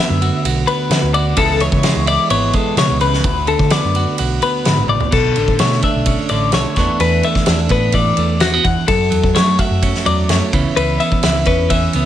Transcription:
Already playing: clean electric guitar D2 D3 F#4 E5
0.00 clean electric guitar B3
0.10 picked electric bass F#2
0.22 clean electric guitar F#4, ride
0.45 picked electric bass B1, clean electric guitar F#4, ride
0.67 clean electric guitar B3 B4, ride
0.90 picked electric bass D3, clean electric guitar F#4, snare, ride
1.02 picked electric bass D2
1.14 clean electric guitar F#4 D5, ride
1.36 picked electric bass C#2, clean electric guitar C#3 E3 G#3 B3 E4 A4, kick, ride
1.60 clean electric guitar E3 C#5, ride
1.72 picked electric bass C#3, kick
1.83 clean electric guitar G#3, snare, ride
1.95 picked electric bass C#2
2.06 clean electric guitar E4 D5, ride
2.30 picked electric bass G#1, clean electric guitar B3 C#5, ride
2.53 clean electric guitar G#3 A4, kick, ride
2.77 clean electric guitar B2 C#5, picked electric bass C#3, snare, ride
2.90 picked electric bass C#2
3.01 clean electric guitar C#3 B4, ride
3.14 snare
3.24 picked electric bass D2, clean electric guitar D2, kick, ride
3.47 clean electric guitar D3 A4, ride
3.59 picked electric bass D3, kick
3.70 clean electric guitar B3 D5, snare, ride
3.85 picked electric bass F#2
3.95 clean electric guitar F#4, ride
4.18 picked electric bass B1, clean electric guitar F#4, ride
4.42 clean electric guitar B3 B4, ride
4.65 clean electric guitar G#2, picked electric bass D3, snare, ride
4.78 picked electric bass A1
4.88 clean electric guitar A2 D5, high tom
5.00 floor tom
5.11 picked electric bass B1, clean electric guitar B2 A4, kick, crash
5.36 picked electric bass A1, clean electric guitar D3, ride
5.48 picked electric bass A1, kick
5.59 picked electric bass B2, clean electric guitar A3 C#5, snare, ride
5.72 snare
5.82 clean electric guitar D4 E5, kick, ride
5.96 picked electric bass B1
6.06 clean electric guitar C#4, kick, ride
6.29 picked electric bass A1, clean electric guitar D3 D5, ride
6.52 picked electric bass B1, clean electric guitar A3 C#5, snare, ride
6.76 clean electric guitar E2 E3 A3 B3 D4, picked electric bass E2, kick, snare, ride
7.00 picked electric bass E2, clean electric guitar E3 B4, ride
7.23 clean electric guitar A3 E5, ride
7.35 kick, snare
7.46 picked electric bass E2, clean electric guitar D4, snare, ride
7.69 picked electric bass A2, clean electric guitar B3 B4, kick, ride
7.92 clean electric guitar E3 D5, kick, ride
8.17 picked electric bass E2, clean electric guitar A3, ride
8.40 clean electric guitar A3 F#4, snare, ride
8.54 clean electric guitar B3
8.64 clean electric guitar E2 F#5, picked electric bass E2, kick, ride
8.87 clean electric guitar F#2 A4, picked electric bass F#2, kick, ride
9.10 picked electric bass E2, clean electric guitar F#3, ride
9.24 picked electric bass E2, kick
9.35 picked electric bass F#3, clean electric guitar A3 C#5, snare, ride
9.59 clean electric guitar F#4 E5, kick, ride
9.71 picked electric bass F#2
9.83 clean electric guitar C#4, kick, ride
9.95 snare
10.05 picked electric bass E2, clean electric guitar F#3 D5, ride
10.29 picked electric bass F#2, clean electric guitar A3 C#5, snare, ride
10.53 picked electric bass C#2, clean electric guitar C#3 E3 B3 C#4 E4, kick, ride
10.76 picked electric bass C#2, clean electric guitar E3 B4, ride
11.00 clean electric guitar B3 E5, ride
11.12 kick
11.23 picked electric bass C#2, clean electric guitar E4, snare, ride
11.45 picked electric bass E2, clean electric guitar C#4 B4, kick, ride
11.70 clean electric guitar E3 E5, kick, ride
11.93 picked electric bass C#2, clean electric guitar B3, ride

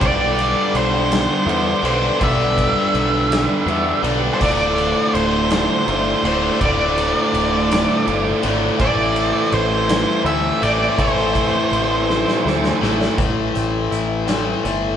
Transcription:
0.00 picked electric bass B1, distorted electric guitar G2 D3 G3 B3 D4 G4, overdriven electric guitar G2 D3 G3, lead electric guitar D5, kick, ride
0.39 ride
0.74 picked electric bass B1, lead electric guitar C5, ride
1.12 snare, ride
1.46 picked electric bass E2, distorted electric guitar G2 D3 G3 B3 D4 G4, ride
1.83 picked electric bass B1, overdriven electric guitar G2 D3 G3, lead electric guitar C5, ride
2.19 picked electric bass B1, overdriven electric guitar G2 D3 G3, distorted electric guitar G2 D3 G3 B3 D4 G4, kick, ride
2.24 lead electric guitar E5
2.58 kick, ride
2.94 picked electric bass B1, ride
3.32 snare, ride
3.66 picked electric bass E2, distorted electric guitar G2 D3 G3, ride
3.70 distorted electric guitar B3 D4 G4
4.02 picked electric bass B1, overdriven electric guitar G2 D3 G3, ride
4.34 lead electric guitar C5
4.39 picked electric bass D1, distorted electric guitar D2 A2 D3 A3 F4, overdriven electric guitar D2 A2 D3, lead electric guitar D5, kick, crash
4.78 ride
5.14 picked electric bass D1, lead electric guitar C5, ride
5.50 snare, ride
5.86 picked electric bass G1, distorted electric guitar D2 A2 D3 A3 F4, ride
6.23 picked electric bass D1, overdriven electric guitar D2 A2 D3, lead electric guitar C5, ride
6.60 picked electric bass D1, distorted electric guitar D2 A2 D3 A3, overdriven electric guitar D2 A2, lead electric guitar D5, kick, ride
6.64 overdriven electric guitar D3, distorted electric guitar F4
6.98 ride
7.34 picked electric bass D1, ride
7.71 snare, ride
8.07 picked electric bass G1, distorted electric guitar D2 A2 D3 A3 F4, ride
8.42 picked electric bass G#1, overdriven electric guitar D2 A2 D3, ride
8.78 picked electric bass A1, overdriven electric guitar A2 E3 A3, distorted electric guitar A2 E3, lead electric guitar D5, kick, ride
8.82 distorted electric guitar A3 C4 E4 A4
9.16 ride
9.52 picked electric bass A1, lead electric guitar C5, ride
9.89 snare, ride
10.24 picked electric bass D2, distorted electric guitar A2 E3 A3 C4 E4 A4, lead electric guitar E5, ride
10.61 picked electric bass A1, overdriven electric guitar A2 E3 A3, lead electric guitar D5, ride
10.97 picked electric bass A1, overdriven electric guitar A2 E3 A3, distorted electric guitar A2 E3 A3 C4 E4 A4, lead electric guitar C5, kick, ride
11.35 kick, ride
11.71 picked electric bass A1, ride
12.10 snare
12.28 snare
12.45 picked electric bass D2, distorted electric guitar A2 E3 A3 C4 E4 A4, snare
12.64 snare
12.81 picked electric bass A1, overdriven electric guitar A2 E3 A3, snare
13.01 snare
13.17 picked electric bass A1, clean electric guitar A2, overdriven electric guitar A2 E3 A3, kick, closed hi-hat
13.54 picked electric bass A1, clean electric guitar C4, closed hi-hat
13.91 picked electric bass A1, clean electric guitar E4, closed hi-hat
14.26 overdriven electric guitar A2 E3 A3, clean electric guitar C4, snare, closed hi-hat
14.64 picked electric bass G1, overdriven electric guitar A2 E3 A3, clean electric guitar A3, closed hi-hat

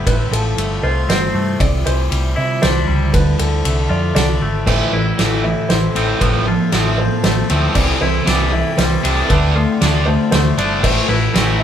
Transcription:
Already playing: clean electric guitar C4
0.06 fingered electric bass A1, clean electric guitar A2, ambient pad C3 A3 F4 C5, felt piano B4, kick, ride
0.31 fingered electric bass A1, clean electric guitar F3, felt piano A4, ride
0.57 fingered electric bass G1, clean electric guitar A3, ride
0.83 fingered electric bass C2, clean electric guitar F4, felt piano C5
1.08 fingered electric bass G1, clean electric guitar C4, felt piano C5, snare, ride
1.34 fingered electric bass G2, clean electric guitar A3
1.59 fingered electric bass C2, clean electric guitar C3, ambient pad D3 G3 E4, felt piano D5, kick, ride
1.85 fingered electric bass C2, clean electric guitar E3, felt piano C5, ride
2.10 fingered electric bass C2, clean electric guitar G3, ride
2.36 fingered electric bass C3, clean electric guitar E4, felt piano E5
2.62 fingered electric bass C2, clean electric guitar D4, felt piano C5, snare, ride
2.87 fingered electric bass C#2, clean electric guitar G3
3.12 fingered electric bass D2, clean electric guitar D3, ambient pad A3 F4 A4, felt piano B4, kick, ride
3.39 fingered electric bass D2, clean electric guitar D3, felt piano A4, ride
3.64 fingered electric bass C2, clean electric guitar A3, ride
3.89 fingered electric bass F2, clean electric guitar F4, felt piano D5
4.15 fingered electric bass C2, clean electric guitar D4, felt piano D5, snare, ride
4.42 fingered electric bass G#1, clean electric guitar A3
4.66 fingered electric bass A1, distorted electric guitar A2 E3 A3, clean electric guitar A2, ambient pad C4 E4 A4 A5, felt piano C5, kick, crash
4.92 fingered electric bass A1, distorted electric guitar A2 E3, clean electric guitar E4, felt piano B4
5.18 fingered electric bass A1, distorted electric guitar A2 E3 A3, clean electric guitar C4, snare, ride
5.44 distorted electric guitar A2 E3, clean electric guitar E3, felt piano E5
5.69 fingered electric bass A1, distorted electric guitar A2 E3, felt piano C5, snare, ride
5.95 fingered electric bass A1, distorted electric guitar A2 E3 A3, clean electric guitar C4, ride
6.20 fingered electric bass A1, distorted electric guitar A2 F3 A3, clean electric guitar A2, ambient pad F4 A4, felt piano B4, kick, ride
6.46 distorted electric guitar A2 F3, clean electric guitar F4, felt piano A4
6.72 fingered electric bass A1, distorted electric guitar A2 F3 A3, clean electric guitar C4, snare, ride
6.98 distorted electric guitar A2 F3, clean electric guitar F3, felt piano C5
7.24 fingered electric bass A1, distorted electric guitar A2 F3, clean electric guitar A3, felt piano C5, snare, ride
7.50 fingered electric bass D2, distorted electric guitar A2 F3 A3, clean electric guitar C4, ride
7.74 fingered electric bass C2, distorted electric guitar C3 E3 G3, clean electric guitar C3, ambient pad E4 D5 G5, felt piano D5, kick, crash
8.01 fingered electric bass C2, distorted electric guitar C3 E3, clean electric guitar E4, felt piano C5
8.25 fingered electric bass C2, distorted electric guitar C3 E3 G3, clean electric guitar D4, snare, ride
8.51 distorted electric guitar C3 E3, clean electric guitar E3, felt piano E5
8.78 fingered electric bass C2, distorted electric guitar C3 E3, clean electric guitar G3, felt piano C5, snare, ride
9.03 fingered electric bass C2, distorted electric guitar C3 E3 G3, clean electric guitar D4, ride
9.29 fingered electric bass D2, distorted electric guitar D3 A3 D4, clean electric guitar D3, ambient pad F4 A4 A5, felt piano B4, kick, ride
9.55 distorted electric guitar D3 A3, clean electric guitar F4, felt piano A4
9.81 fingered electric bass D2, distorted electric guitar D3 A3 D4, clean electric guitar D4, snare, ride
10.06 distorted electric guitar D3 A3, clean electric guitar D3, felt piano C5
10.31 fingered electric bass D2, distorted electric guitar D3 A3, clean electric guitar A3, felt piano C5, snare, ride
10.58 fingered electric bass G1, distorted electric guitar D3 A3 D4, clean electric guitar D4, ride
10.82 fingered electric bass A1, distorted electric guitar A2 E3 A3, clean electric guitar A2, ambient pad C4 E4 A4, felt piano C5, kick, crash
11.08 fingered electric bass A1, distorted electric guitar A2 E3, clean electric guitar E4, felt piano B4
11.34 fingered electric bass A1, distorted electric guitar A2 E3 A3, clean electric guitar C4, snare, ride
11.59 clean electric guitar E3, felt piano E5

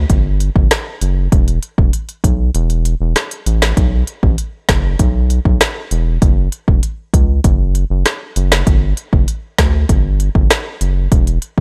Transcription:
0.10 analog synth bass G1, kick, closed hi-hat
0.40 closed hi-hat
0.56 analog synth bass G1, kick
0.71 cross-stick, snare, closed hi-hat
1.01 analog synth bass F#1, closed hi-hat
1.32 analog synth bass E1, kick, closed hi-hat
1.48 closed hi-hat
1.63 closed hi-hat
1.78 analog synth bass E1, kick
1.93 closed hi-hat
2.09 closed hi-hat
2.24 analog synth bass B1, kick, closed hi-hat
2.55 analog synth bass E1, closed hi-hat
2.70 closed hi-hat
2.85 closed hi-hat
3.00 analog synth bass E1
3.16 cross-stick, snare, closed hi-hat
3.31 closed hi-hat
3.46 analog synth bass A1, closed hi-hat
3.62 cross-stick, snare
3.77 analog synth bass B1, kick, closed hi-hat
4.07 closed hi-hat
4.23 analog synth bass A1, kick
4.38 closed hi-hat
4.69 analog synth bass F#1, kick, cross-stick, snare, closed hi-hat
4.99 analog synth bass B1, kick, closed hi-hat
5.30 closed hi-hat
5.45 analog synth bass B1, kick
5.61 cross-stick, snare, closed hi-hat
5.91 analog synth bass E1, closed hi-hat
6.22 analog synth bass F#1, kick, closed hi-hat
6.52 closed hi-hat
6.68 analog synth bass E1, kick
6.83 closed hi-hat
7.14 analog synth bass C#2, kick, closed hi-hat
7.44 analog synth bass F#1, kick, closed hi-hat
7.75 closed hi-hat
7.90 analog synth bass F#1
8.06 cross-stick, snare, closed hi-hat
8.36 analog synth bass F#1, closed hi-hat
8.52 cross-stick, snare
8.67 analog synth bass G1, kick, closed hi-hat
8.97 closed hi-hat
9.13 analog synth bass F#1, kick
9.28 closed hi-hat
9.58 analog synth bass D2, kick, cross-stick, snare, closed hi-hat
9.89 analog synth bass G1, kick, closed hi-hat
10.20 closed hi-hat
10.35 analog synth bass G1, kick
10.50 cross-stick, snare, closed hi-hat
10.81 analog synth bass F#1, closed hi-hat
11.12 analog synth bass E1, kick, closed hi-hat
11.27 closed hi-hat
11.42 closed hi-hat

